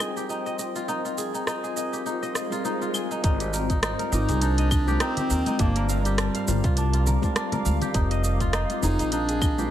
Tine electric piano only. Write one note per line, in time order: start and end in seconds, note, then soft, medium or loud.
0.00 2.50 G3 medium
0.00 0.88 C4 medium
0.00 0.89 F4 medium
0.00 0.90 A#4 medium
0.00 0.91 D#5 medium
0.88 1.73 C4 medium
0.88 1.74 F4 medium
0.88 1.74 A#4 medium
0.88 1.75 D#5 medium
1.76 2.48 C4 medium
1.76 2.49 F4 medium
1.76 2.49 A#4 medium
1.76 2.50 D#5 medium
2.50 3.20 G3 medium
2.50 3.20 C4 medium
2.50 3.21 F4 medium
2.50 3.21 A#4 medium
2.54 3.22 D#5 medium
3.22 4.08 G3 medium
3.22 4.09 C4 medium
3.22 4.09 F4 medium
3.22 4.10 A#4 medium
3.22 4.10 D5 medium
4.11 4.84 C4 medium
4.11 4.84 F4 medium
4.11 4.85 A#4 medium
4.11 4.85 D6 medium
4.87 5.56 C4 medium
4.87 5.56 F4 medium
4.87 5.57 A#4 medium
4.87 5.57 D6 medium
5.57 6.43 G3 medium
5.57 6.44 C4 medium
5.57 6.44 F4 medium
5.57 6.45 A#4 medium
5.57 6.45 D5 medium
6.46 7.19 G3 medium
6.46 7.19 C4 medium
6.46 7.20 F4 medium
6.46 7.20 A#4 medium
6.50 7.21 D5 medium
7.21 7.91 G3 medium
7.21 7.91 C4 medium
7.21 7.92 F4 medium
7.21 7.92 A#4 medium
7.21 7.93 D5 medium
7.93 8.79 G3 medium
7.93 8.79 C4 medium
7.93 8.80 F4 medium
7.93 8.80 A#4 medium
7.93 8.81 D#5 medium
8.82 9.54 C4 medium
8.82 9.55 F4 medium
8.82 9.55 A#4 medium
8.82 9.56 F5 medium
9.57 9.71 C4 medium
9.57 9.71 F4 medium
9.57 9.71 A#4 medium
9.57 9.71 D#5 medium